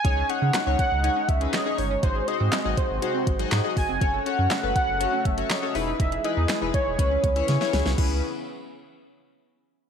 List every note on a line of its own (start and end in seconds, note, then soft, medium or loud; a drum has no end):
0.00 0.31 G#5 loud
0.04 0.23 C#2 loud
0.04 2.01 C#3 medium
0.04 3.98 G#3 medium
0.04 0.24 C#4 medium
0.04 0.24 D#4 medium
0.04 2.01 D#4 medium
0.04 0.25 G#4 medium
0.04 0.14 C#5 loud
0.04 0.25 C#5 medium
0.04 kick loud
0.04 closed hi-hat medium
0.17 0.26 G#4 medium
0.29 0.59 C#4 medium
0.29 0.59 D#4 medium
0.29 0.59 G#4 medium
0.29 0.59 C#5 medium
0.29 0.79 F#5 loud
0.29 closed hi-hat medium
0.42 0.51 C#3 loud
0.42 0.51 C#4 medium
0.54 0.63 G#3 medium
0.54 snare medium
0.54 clap loud
0.54 closed hi-hat loud
0.66 0.76 C#2 loud
0.66 0.76 D#3 medium
0.66 0.96 C#4 medium
0.66 0.96 D#4 medium
0.66 0.96 G#4 medium
0.66 0.96 C#5 medium
0.79 0.88 C#5 loud
0.79 1.30 F#5 loud
0.79 kick medium
0.79 closed hi-hat medium
0.92 1.09 C#2 medium
1.03 1.33 C#4 medium
1.03 1.33 D#4 medium
1.03 1.13 D#4 medium
1.03 1.34 G#4 medium
1.03 1.34 C#5 medium
1.03 closed hi-hat medium
1.16 1.25 C#4 medium
1.29 1.47 C#2 medium
1.29 1.38 G#3 medium
1.29 1.53 E5 loud
1.29 kick medium
1.29 closed hi-hat medium
1.41 1.50 D#3 medium
1.41 1.61 C#4 medium
1.41 1.61 D#4 medium
1.41 1.61 G#4 medium
1.41 1.61 B4 medium
1.41 closed hi-hat medium
1.53 1.62 C#5 loud
1.53 1.80 D#5 loud
1.53 snare medium
1.53 clap loud
1.53 closed hi-hat medium
1.66 1.95 C#4 medium
1.66 1.96 D#4 medium
1.66 1.75 G#4 medium
1.66 1.96 G#4 medium
1.66 1.96 C#5 medium
1.78 1.96 G1 loud
1.78 1.87 D#4 medium
1.78 2.02 C#5 medium
1.78 open hi-hat medium
1.91 2.00 C#4 medium
2.03 2.21 G#1 loud
2.03 3.99 C3 medium
2.03 2.23 D#4 medium
2.03 2.23 F#4 medium
2.03 5.71 F#4 medium
2.03 2.23 G#4 medium
2.03 2.29 C5 loud
2.03 2.12 C5 loud
2.03 2.23 C5 medium
2.03 kick loud
2.03 closed hi-hat medium
2.15 2.24 G#4 medium
2.28 2.57 D#4 medium
2.28 2.58 F#4 medium
2.28 2.58 G#4 medium
2.28 2.58 C5 medium
2.28 2.79 D#5 loud
2.28 closed hi-hat medium
2.40 2.49 G#2 loud
2.40 2.49 C4 medium
2.52 2.62 G#3 medium
2.52 snare medium
2.52 clap loud
2.52 closed hi-hat loud
2.65 2.74 G#1 medium
2.65 2.74 F#3 medium
2.65 2.95 D#4 medium
2.65 2.95 F#4 medium
2.65 2.95 G#4 medium
2.65 2.95 D#5 medium
2.77 3.52 C5 medium
2.77 2.86 C5 loud
2.77 kick loud
2.77 closed hi-hat medium
2.90 2.99 G#1 medium
3.02 3.32 D#4 medium
3.02 3.11 F#4 medium
3.02 3.32 F#4 medium
3.02 3.32 G#4 medium
3.02 3.32 C5 medium
3.02 closed hi-hat medium
3.15 3.24 C4 medium
3.27 3.45 G#1 medium
3.27 3.36 G#3 medium
3.27 kick medium
3.27 closed hi-hat medium
3.39 3.48 F#3 medium
3.39 3.59 D#4 medium
3.39 3.59 F#4 medium
3.39 3.59 G#4 medium
3.39 3.59 D#5 medium
3.39 closed hi-hat medium
3.51 3.61 G#2 loud
3.51 3.61 C5 loud
3.51 snare medium
3.51 clap loud
3.51 closed hi-hat medium
3.64 3.94 D#4 medium
3.64 3.94 F#4 medium
3.64 3.94 G#4 medium
3.64 3.73 G#4 medium
3.64 3.94 D#5 medium
3.77 3.86 G#1 loud
3.77 3.86 F#4 medium
3.77 4.28 G#5 loud
3.77 kick medium
3.77 open hi-hat medium
3.89 3.98 F1 medium
3.89 3.98 C4 medium
4.01 4.19 F#1 medium
4.01 5.73 C#3 medium
4.01 5.73 A3 medium
4.01 4.21 C#4 medium
4.01 4.21 F#4 medium
4.01 4.21 A4 medium
4.01 4.10 C#5 loud
4.01 4.21 C#5 medium
4.01 kick loud
4.01 closed hi-hat medium
4.14 4.23 A4 medium
4.26 4.56 C#4 medium
4.26 4.56 F#4 medium
4.26 4.56 A4 medium
4.26 4.56 C#5 medium
4.26 4.75 F#5 loud
4.26 closed hi-hat medium
4.39 4.48 F#2 loud
4.39 4.48 C#4 medium
4.51 4.60 A3 medium
4.51 snare medium
4.51 clap loud
4.51 closed hi-hat medium
4.63 4.72 F#1 loud
4.63 4.72 F#3 medium
4.63 4.93 C#4 medium
4.63 4.93 F#4 medium
4.63 4.93 A4 medium
4.63 4.93 B4 medium
4.76 4.85 C#5 loud
4.76 5.27 F#5 loud
4.76 kick medium
4.76 closed hi-hat medium
4.88 5.06 F#1 medium
5.00 5.30 C#4 medium
5.00 5.30 F#4 medium
5.00 5.10 F#4 medium
5.00 5.30 A4 medium
5.00 5.30 C#5 medium
5.00 closed hi-hat medium
5.13 5.22 C#4 medium
5.25 5.43 F#1 loud
5.25 5.34 A3 medium
5.25 5.52 E5 loud
5.25 kick medium
5.25 closed hi-hat medium
5.37 5.47 F#3 medium
5.37 5.57 C#4 medium
5.37 5.57 F#4 medium
5.37 5.58 A4 medium
5.37 5.58 C#5 medium
5.37 closed hi-hat medium
5.50 5.59 C#5 loud
5.50 5.77 D#5 loud
5.50 snare medium
5.50 clap loud
5.50 closed hi-hat medium
5.62 5.75 C#4 medium
5.62 5.75 F#4 medium
5.62 5.72 A4 medium
5.62 5.75 A4 medium
5.62 5.75 C#5 medium
5.75 5.93 E1 loud
5.75 6.98 E3 medium
5.75 6.98 G#3 medium
5.75 6.15 D#4 medium
5.75 6.15 E4 medium
5.75 5.84 E4 medium
5.75 7.96 G#4 medium
5.75 6.15 G#4 medium
5.75 6.15 B4 medium
5.75 5.99 E5 loud
5.75 open hi-hat medium
5.87 5.96 D#4 loud
6.00 6.18 E1 loud
6.00 6.09 D#5 loud
6.00 6.26 E5 loud
6.00 kick loud
6.00 closed hi-hat medium
6.12 6.21 G#4 medium
6.12 closed hi-hat soft
6.24 6.54 D#4 medium
6.24 6.54 E4 medium
6.24 6.54 G#4 medium
6.24 6.54 B4 medium
6.24 6.74 D#5 loud
6.24 closed hi-hat medium
6.37 6.46 E2 loud
6.37 6.46 D#4 medium
6.49 6.58 G#3 medium
6.49 snare medium
6.49 clap loud
6.49 closed hi-hat medium
6.62 6.71 E1 medium
6.62 6.71 E3 medium
6.62 6.91 D#4 medium
6.62 6.91 E4 medium
6.62 6.92 G#4 medium
6.62 6.92 B4 medium
6.74 7.45 C#5 medium
6.74 6.83 D#5 loud
6.74 kick medium
6.74 closed hi-hat medium
6.87 6.96 E1 medium
6.99 7.17 C#2 loud
6.99 7.97 C#3 medium
6.99 7.97 B3 medium
6.99 7.29 C#4 medium
6.99 7.29 E4 medium
6.99 7.08 E4 medium
6.99 7.29 G#4 medium
6.99 7.29 B4 medium
6.99 kick loud
6.99 closed hi-hat medium
7.11 7.20 C#4 medium
7.24 7.42 C#2 loud
7.24 7.33 B3 medium
7.24 kick medium
7.24 closed hi-hat medium
7.36 7.45 E3 medium
7.36 7.56 C#4 medium
7.36 7.56 E4 medium
7.36 7.56 G#4 medium
7.36 7.56 C#5 medium
7.36 closed hi-hat medium
7.48 7.58 C#3 loud
7.48 7.58 C#5 loud
7.48 snare medium
7.48 closed hi-hat medium
7.61 7.91 C#4 medium
7.61 7.91 E4 medium
7.61 7.91 G#4 medium
7.61 7.70 B4 medium
7.61 7.91 C#5 loud
7.61 snare medium
7.73 7.82 C#2 medium
7.73 7.82 E4 medium
7.73 snare medium
7.73 open hi-hat medium
7.86 7.95 C2 medium
7.86 7.95 C#4 medium
7.86 snare loud
7.98 8.21 C#2 loud
7.98 8.21 E3 medium
7.98 8.21 B3 medium
7.98 8.21 C#4 medium
7.98 8.21 E4 medium
7.98 8.21 G#4 medium
7.98 8.21 B4 medium
7.98 kick loud
7.98 crash medium